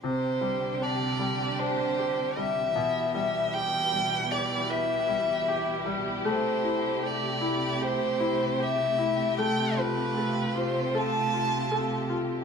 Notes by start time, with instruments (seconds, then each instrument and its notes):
0.02 string section C3 D3 G3 D4 G4, grand piano C3, violin C5
0.41 grand piano G3
0.82 grand piano D4, violin D5
1.19 grand piano G3
1.59 grand piano D4, violin C5
1.99 grand piano G4
2.37 grand piano G3, violin E5
2.76 grand piano B2, string section B2 E3 E4 G4
3.15 grand piano G3, violin E5
3.53 grand piano G4, violin G5
3.93 grand piano G3
4.31 grand piano G4, violin D5
4.70 grand piano B4, violin E5
5.09 grand piano G3
5.48 grand piano G4
5.86 grand piano G3
6.25 string section C3 A3, grand piano A3, violin C5
6.64 grand piano E4
7.03 grand piano G4, violin D5
7.41 grand piano E4
7.81 grand piano G4, violin C5
8.20 grand piano E4
8.60 grand piano G4, violin E5
8.98 grand piano E4
9.38 grand piano A3, string section F4, violin G5
9.78 grand piano F4, violin B4
10.17 grand piano A4
10.56 grand piano F4, violin C5
10.95 grand piano A4, violin A5
11.33 grand piano F4
11.71 grand piano A4
12.10 grand piano F4